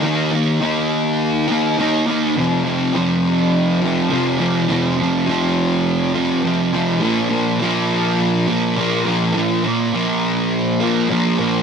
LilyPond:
\new Staff \with { instrumentName = "Distorted electric guitar" } { \clef bass \time 4/4 \key f \mixolydian \tempo 4 = 103 <ees bes ees'>8 <bes ees'>8 <ees bes ees'>4. <bes ees'>8 <ees bes ees'>8 <bes ees'>8 | <f, c f>8 <c f>8 <f, c f>4. <c f>8 <f, c f>8 <c f>8 | <f, c f>8 <c f>8 <f, c f>4. <c f>8 <f, c f>8 <c f>8 | <bes, f bes>8 <f bes>8 <bes, f bes>4. <f bes>8 <bes, f bes>8 <f bes>8 |
<bes, f bes>8 <f bes>8 <bes, f bes>4. <f bes>8 <bes, f bes>8 <f bes>8 | }